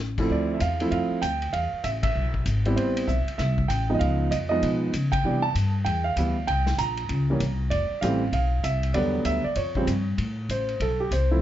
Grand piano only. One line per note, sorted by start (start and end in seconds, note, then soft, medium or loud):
0.19 0.59 D2 medium
0.19 0.59 F3 medium
0.19 0.59 A3 medium
0.19 0.59 C4 medium
0.19 0.59 E4 medium
0.32 0.54 D5 medium
0.54 0.60 E5 medium
0.61 0.89 F5 medium
0.81 1.20 F3 medium
0.81 1.21 A3 medium
0.81 1.21 C4 medium
0.81 1.21 E4 medium
0.91 1.20 F5 medium
1.22 1.51 G5 medium
1.53 1.82 F5 medium
1.84 1.89 E5 medium
2.03 2.43 E5 medium
2.66 3.06 G3 medium
2.66 3.06 B3 medium
2.66 3.06 C4 medium
2.66 3.06 E4 medium
2.76 3.08 C5 medium
3.07 3.36 E5 medium
3.38 3.67 E5 medium
3.68 3.95 G5 medium
3.89 4.29 F3 medium
3.89 4.29 G#3 medium
3.89 4.29 B3 medium
3.89 4.30 D#4 medium
3.94 4.00 D#5 medium
3.99 4.32 F5 medium
4.31 4.36 D#5 medium
4.49 4.91 F3 medium
4.49 4.91 G#3 medium
4.49 4.91 B3 medium
4.49 4.91 D#4 medium
4.49 4.89 D#5 medium
5.12 5.41 G5 loud
5.25 5.42 E3 medium
5.25 5.42 G3 medium
5.25 5.42 B3 medium
5.25 5.42 D4 medium
5.42 5.72 A5 medium
5.85 6.03 G5 medium
6.04 6.44 F5 medium
6.18 6.35 E3 medium
6.18 6.35 G3 medium
6.18 6.35 B3 medium
6.18 6.35 E4 medium
6.47 6.76 G5 loud
6.78 7.56 A#5 medium
7.30 7.40 E3 medium
7.30 7.40 G3 medium
7.30 7.40 A#3 medium
7.30 7.40 C#4 medium
7.70 8.03 D5 medium
8.01 8.20 E3 medium
8.01 8.20 G3 medium
8.01 8.20 A3 medium
8.01 8.20 C4 medium
8.01 8.32 F5 medium
8.33 8.62 F5 medium
8.64 8.96 E5 medium
8.94 9.41 D3 medium
8.94 9.41 F#3 medium
8.94 9.41 G3 medium
8.94 9.41 B3 medium
8.94 9.26 D5 medium
9.25 9.43 E5 medium
9.44 9.56 D5 medium
9.57 10.03 C#5 medium
9.76 9.86 C#3 medium
9.76 9.87 F3 medium
9.76 9.87 G3 medium
9.76 9.87 C4 medium
10.51 10.79 C5 medium
10.82 11.00 A4 medium
11.00 11.11 G4 medium
11.13 11.42 C5 medium
11.31 11.42 F3 medium
11.31 11.42 A3 medium
11.31 11.42 C4 medium
11.31 11.42 E4 medium